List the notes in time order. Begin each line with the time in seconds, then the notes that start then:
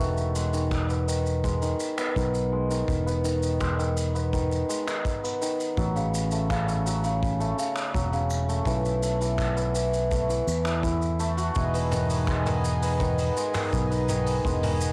Already playing: E1 A3 B3 F#4
0.00 D#3, shaker
0.17 shaker
0.35 G#3, shaker
0.53 D#3, shaker
0.71 finger snap, kick, shaker
0.90 B3, shaker
1.08 D#3, shaker
1.26 shaker
1.44 G#3, kick, shaker
1.62 D#3, shaker
1.80 shaker
1.98 B3, finger snap, shaker
2.16 B1 D#3, kick, shaker
2.34 shaker
2.52 G#3
2.71 D#3, shaker
2.88 E1, kick, shaker
3.06 B3, shaker
3.24 D#3, shaker
3.43 shaker
3.60 G#3, finger snap, kick, shaker
3.79 D#3, shaker
3.97 shaker
4.15 B3, shaker
4.33 D#3, kick, shaker
4.52 shaker
4.69 G#3, shaker
4.87 D#3, finger snap, shaker
5.05 kick, shaker
5.23 B3, shaker
5.41 D#3, shaker
5.60 shaker
5.77 A1 F#3, kick, shaker
5.95 C#3, shaker
6.15 shaker
6.31 A3, shaker
6.50 C#3, finger snap, kick, shaker
6.69 shaker
6.86 F#3, shaker
7.04 C#3, shaker
7.23 kick, shaker
7.40 A3, shaker
7.58 C#3, shaker
7.76 finger snap, shaker
7.94 E1 F#3, kick, shaker
8.13 C#3, shaker
8.30 shaker
8.49 A3, shaker
8.65 B1 E3, kick, shaker
8.85 shaker
9.03 A3, shaker
9.21 E3, shaker
9.38 finger snap, kick, shaker
9.57 B3, shaker
9.75 E3, shaker
9.94 shaker
10.11 A3, kick, shaker
10.29 E3, shaker
10.47 E2, shaker
10.65 E3, finger snap, shaker
10.83 E4, kick, shaker
11.02 shaker
11.20 A3, shaker
11.37 F#4, shaker
11.55 E1 B3 D#4 G#4, kick, shaker
11.74 B3, open hi-hat, shaker
11.91 D#3, mid tom, shaker
12.10 open hi-hat, shaker
12.27 G#3, finger snap, kick, shaker
12.46 D#3, mid tom, open hi-hat, shaker
12.65 shaker
12.82 B3, open hi-hat, shaker
13.00 D#3, kick, mid tom, shaker
13.19 open hi-hat, shaker
13.37 G#3, shaker
13.54 D#3, finger snap, mid tom, open hi-hat, shaker
13.73 B1, kick, shaker
13.91 B3, open hi-hat, shaker
14.09 D#3, mid tom, shaker
14.26 open hi-hat, shaker
14.45 E1 G#3, kick, shaker
14.63 D#3, mid tom, open hi-hat, shaker
14.81 shaker